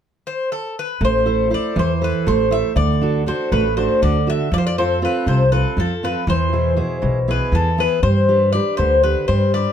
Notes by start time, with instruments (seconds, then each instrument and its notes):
0.27 bouzouki C5
0.52 bouzouki A4
0.79 bouzouki B4
1.01 upright bass A1, steel-string acoustic guitar A3, bouzouki C5
1.26 steel-string acoustic guitar E4 A4 C5
1.50 steel-string acoustic guitar E4 A4 C5, bouzouki D5
1.76 upright bass E2, steel-string acoustic guitar E3, bouzouki C5
2.01 steel-string acoustic guitar E4 A4 C5, bouzouki B4
2.26 upright bass A1, steel-string acoustic guitar A3, bouzouki C5
2.51 steel-string acoustic guitar E4 A4 C5, bouzouki E5
2.76 upright bass D2, steel-string acoustic guitar D3, bouzouki D5
3.01 steel-string acoustic guitar D4 F#4 A4
3.26 steel-string acoustic guitar D4 F#4 A4, bouzouki C5
3.52 upright bass A1, steel-string acoustic guitar A3, bouzouki B4
3.77 steel-string acoustic guitar D4 F#4 A4, bouzouki C5
4.02 upright bass D2, steel-string acoustic guitar D3, bouzouki D5
4.27 steel-string acoustic guitar D4 F#4 A4, bouzouki E5
4.52 upright bass F2, steel-string acoustic guitar F3, bouzouki D5
4.58 bouzouki C5
4.67 bouzouki D5
4.78 steel-string acoustic guitar C4 F4 A4, bouzouki C5
5.02 steel-string acoustic guitar C4 F4 A4, bouzouki B4
5.26 upright bass C2, steel-string acoustic guitar C3, bouzouki C5
5.52 steel-string acoustic guitar C4 F4 A4, bouzouki B4
5.77 upright bass F2, steel-string acoustic guitar F3, bouzouki A4
6.03 steel-string acoustic guitar C4 F4 A4, bouzouki B4
6.27 upright bass E2, steel-string acoustic guitar E3, bouzouki C5
6.53 steel-string acoustic guitar B2 E4 G#4
6.76 steel-string acoustic guitar B2 E4 G#4
7.02 upright bass B1, steel-string acoustic guitar B2
7.28 steel-string acoustic guitar B3 E4 G#4, bouzouki B4
7.52 upright bass E2, steel-string acoustic guitar E3, bouzouki A4
7.78 steel-string acoustic guitar B3 E4 G#4, bouzouki B4
8.03 upright bass G2, steel-string acoustic guitar G3, bouzouki C5
8.28 steel-string acoustic guitar D4 G4 B4
8.52 steel-string acoustic guitar D4 G4 B4, bouzouki D5
8.77 upright bass D2, steel-string acoustic guitar D3, bouzouki C5
9.03 steel-string acoustic guitar D4 G4 B4, bouzouki B4
9.28 upright bass G2, steel-string acoustic guitar G3, bouzouki C5
9.53 steel-string acoustic guitar D4 G4 B4, bouzouki D5